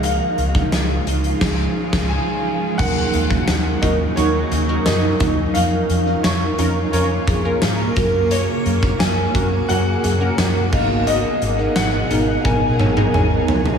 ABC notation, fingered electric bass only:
X:1
M:4/4
L:1/16
Q:1/4=87
K:Ebm
V:1 name="Fingered electric bass" clef=bass
D,,2 D,,2 D,,2 D,,2 D,,2 z D,,2 z3 | E,,2 E,,2 E,,2 E,,2 E,,2 E,,2 G,,2 E,,2 | F,,2 F,,2 F,,2 F,,2 F,,2 F,,2 A,,2 G,,2- | G,,2 G,,2 G,,2 G,,2 G,,2 G,,2 G,,2 A,,,2- |
A,,,2 A,,,2 A,,,2 A,,,2 A,,,2 A,,,2 A,,,2 D,,2 |]